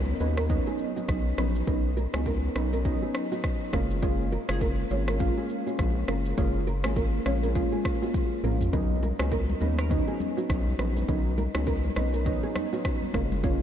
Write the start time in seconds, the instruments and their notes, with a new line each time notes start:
Already playing: analog synth bass C#2, synth keys F#3 B3 C#4 D#4, impact
0.20 analog synth bass D#2, synth keys F#3 B3 C#4 D#4, nylon-string guitar B4, shaker
0.37 nylon-string guitar A#4, cross-stick, shaker
0.50 synth keys F#3 B3 C#4 D#4, kick, shaker
0.67 nylon-string guitar G#4
0.79 shaker
0.96 synth keys F#3 B3 C#4 D#4, nylon-string guitar F#4, shaker
1.08 analog synth bass B1, kick, cross-stick, shaker
1.38 analog synth bass A#1, synth keys F#3 B3 C#4 D#4, nylon-string guitar B4, cross-stick, shaker
1.55 shaker
1.67 analog synth bass B1, synth keys F#3 B3 C#4 D#4, nylon-string guitar B4, kick, shaker
1.97 nylon-string guitar A#4, shaker
2.13 analog synth bass C#2, synth keys F#3 B3 C#4 D#4, nylon-string guitar G#4, cross-stick, shaker
2.26 nylon-string guitar A#4, kick, shaker
2.56 analog synth bass B1, synth keys F#3 B3 C#4 D#4, nylon-string guitar B4, cross-stick, shaker
2.73 nylon-string guitar A#4, shaker
2.85 synth keys F#3 B3 C#4 D#4, kick, shaker
3.02 nylon-string guitar G#4
3.14 cross-stick, shaker
3.31 synth keys F#3 B3 C#4 D#4, nylon-string guitar F#4, shaker
3.44 kick, cross-stick, shaker
3.73 analog synth bass F#1, synth keys G#3 A#3 C#4 F4, nylon-string guitar A#4, kick, cross-stick, shaker
3.91 shaker
4.02 synth keys G#3 A#3 C#4 F4, nylon-string guitar C#5, kick, shaker
4.32 nylon-string guitar A#4, shaker
4.48 analog synth bass F#1, synth keys G#3 A#3 C#4 F4, nylon-string guitar G#4, cross-stick, shaker
4.61 nylon-string guitar A#4, kick, shaker
4.90 analog synth bass G#1, synth keys G#3 A#3 C#4 F4, nylon-string guitar C#5, shaker
5.08 nylon-string guitar A#4, cross-stick, shaker
5.20 synth keys G#3 A#3 C#4 F4, kick, shaker
5.37 nylon-string guitar G#4
5.49 shaker
5.66 synth keys G#3 A#3 C#4 F4, nylon-string guitar F#4, shaker
5.79 analog synth bass A#1, kick, cross-stick, shaker
6.08 analog synth bass F#1, synth keys G#3 A#3 C#4 F4, nylon-string guitar A#4, cross-stick, shaker
6.25 shaker
6.38 analog synth bass F#1, synth keys G#3 A#3 C#4 F4, nylon-string guitar C#5, kick, shaker
6.67 nylon-string guitar A#4, shaker
6.84 analog synth bass G#1, synth keys G#3 A#3 C#4 F4, nylon-string guitar G#4, cross-stick, shaker
6.96 nylon-string guitar A#4, kick, shaker
7.26 analog synth bass A#1, synth keys G#3 A#3 C#4 F4, nylon-string guitar C#5, cross-stick, shaker
7.43 nylon-string guitar A#4, shaker
7.55 synth keys G#3 A#3 C#4 F4, kick, shaker
7.72 nylon-string guitar G#4
7.85 kick, cross-stick, shaker
8.02 synth keys G#3 A#3 C#4 F4, nylon-string guitar F#4, shaker
8.14 kick, high tom, shaker
8.43 analog synth bass A#1, synth keys G#3 A#3 C#4 F4, nylon-string guitar A#4, mid tom, shaker
8.61 floor tom, shaker
8.73 analog synth bass B1, synth keys F#3 B3 C#4 D#4, nylon-string guitar B4, kick, low conga, shaker
9.03 nylon-string guitar A#4, high conga, shaker
9.19 analog synth bass C#2, synth keys F#3 B3 C#4 D#4, nylon-string guitar G#4, cross-stick, shaker
9.32 nylon-string guitar A#4, kick, shaker
9.50 high conga
9.61 analog synth bass D#2, synth keys F#3 B3 C#4 D#4, nylon-string guitar B4, high conga, shaker
9.78 nylon-string guitar A#4, cross-stick, shaker
9.90 synth keys F#3 B3 C#4 D#4, kick, low conga, shaker
10.08 nylon-string guitar G#4
10.20 high conga, shaker
10.37 synth keys F#3 B3 C#4 D#4, nylon-string guitar F#4, shaker
10.50 analog synth bass B1, kick, cross-stick, shaker
10.67 high conga
10.79 analog synth bass A#1, synth keys F#3 B3 C#4 D#4, nylon-string guitar B4, cross-stick, shaker
10.96 high conga, shaker
11.08 analog synth bass B1, synth keys F#3 B3 C#4 D#4, nylon-string guitar B4, kick, low conga, shaker
11.38 nylon-string guitar A#4, high conga, shaker
11.54 analog synth bass C#2, synth keys F#3 B3 C#4 D#4, nylon-string guitar G#4, cross-stick, shaker
11.67 nylon-string guitar A#4, kick, shaker
11.85 high conga
11.96 analog synth bass B1, synth keys F#3 B3 C#4 D#4, nylon-string guitar B4, cross-stick, high conga, shaker
12.14 nylon-string guitar A#4, shaker
12.25 synth keys F#3 B3 C#4 D#4, kick, low conga, shaker
12.43 nylon-string guitar G#4
12.55 cross-stick, high conga, shaker
12.72 synth keys F#3 B3 C#4 D#4, nylon-string guitar F#4, shaker
12.85 kick, cross-stick, shaker
13.02 high conga
13.14 analog synth bass F#1, synth keys G#3 A#3 C#4 F4, nylon-string guitar A#4, kick, cross-stick, shaker
13.32 high conga, shaker
13.43 synth keys G#3 A#3 C#4 F4, nylon-string guitar C#5, kick, low conga, shaker